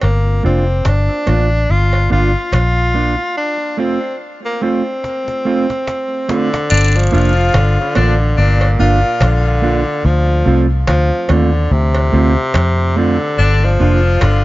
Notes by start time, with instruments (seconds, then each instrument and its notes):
0.01 fingered electric bass G1, tenor saxophone A#3, cajon slap, cowbell
0.43 fingered electric bass F1, clean electric guitar A#3 D4 F4, tenor saxophone C4, cajon slap
0.68 cajon slap
0.85 fingered electric bass G1, tenor saxophone D4, cajon bass, cajon slap, cowbell
1.27 fingered electric bass A1, clean electric guitar A#3 D4 F4, cajon slap, cowbell
1.50 cajon slap
1.69 fingered electric bass G1, tenor saxophone F4, cajon slap
1.93 cowbell
2.10 fingered electric bass G1, clean electric guitar A#3 D4 F4, tenor saxophone F4, cajon slap
2.35 cajon slap
2.52 fingered electric bass A#1, tenor saxophone F4, cajon bass, cajon slap, cowbell
2.94 clean electric guitar A#3 D4 F4
3.19 muted clean electric guitar stroke, cajon slap
3.37 tenor saxophone D4
3.77 clean electric guitar A3 C4 F4, tenor saxophone C4
4.45 tenor saxophone A#3
4.62 clean electric guitar A3 C4 F4, tenor saxophone C4
5.04 cajon slap
5.28 cajon slap
5.45 clean electric guitar A3 C4 F4
5.70 cajon slap
5.87 cajon slap
6.28 tenor saxophone D3, clean electric guitar A3 C4 F4, cajon slap
6.53 muted clean electric guitar stroke, cajon slap
6.70 fingered electric bass G1, tenor saxophone D4, cajon slap, vibraslap
6.96 tenor saxophone F3
7.12 fingered electric bass F1, clean electric guitar A#3 D4 F4, tenor saxophone F4, cajon slap
7.38 cajon slap
7.54 fingered electric bass G1, tenor saxophone D3, cajon bass, cajon slap, cowbell
7.81 tenor saxophone D3
7.95 fingered electric bass A1, clean electric guitar A#3 D4 F4, tenor saxophone D4, cajon slap, cowbell
8.19 cajon slap
8.37 fingered electric bass G1, tenor saxophone A#2 D4, cajon slap
8.61 cowbell
8.78 fingered electric bass G1, tenor saxophone A#2 F4, clean electric guitar A#3 D4 F4, cajon slap
9.21 fingered electric bass A#1, tenor saxophone D3, cajon bass, cajon slap, cowbell
9.62 clean electric guitar A#3 D4 F4
9.87 muted clean electric guitar stroke
10.04 fingered electric bass D2, tenor saxophone F3, cajon slap
10.46 fingered electric bass C2, clean electric guitar A3 C4 F4, cajon slap
10.71 cajon slap
10.87 fingered electric bass D2, tenor saxophone F3, cajon bass, cajon slap, cowbell
11.29 fingered electric bass D#2, tenor saxophone D3, clean electric guitar A3 C4 F4, cajon slap, cowbell
11.53 cajon slap
11.70 fingered electric bass D2, tenor saxophone C3, cajon slap
11.95 cowbell
12.12 fingered electric bass D2, clean electric guitar A3 C4 F4, cajon slap
12.54 fingered electric bass F2, cajon bass, cajon slap, cowbell
12.96 tenor saxophone D3, clean electric guitar A3 C4 F4
13.20 muted clean electric guitar stroke, cajon slap
13.38 fingered electric bass G1, tenor saxophone D4
13.64 tenor saxophone F3
13.80 fingered electric bass F1, clean electric guitar A#3 D4 F4, tenor saxophone F4
14.21 fingered electric bass G1, tenor saxophone D3, cajon bass, cajon slap, cowbell